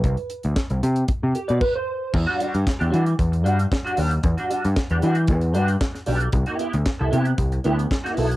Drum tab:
CC |------------x---|x---------------|----------------|----------------|
HH |xxxx-xxxx-xx----|--xx-xxxxxxx-xox|xxxx-xxxxxxx-xox|xxxx--xxxxxx-xox|
CP |----x-----------|----x-------x---|----x-------x---|----x-------x---|
SD |----o-----------|----o-------o---|----o-------oo--|----o-------oo--|
BD |o---o---o---o---|o---o---o---o---|o---o---o---o---|o---o---o---o---|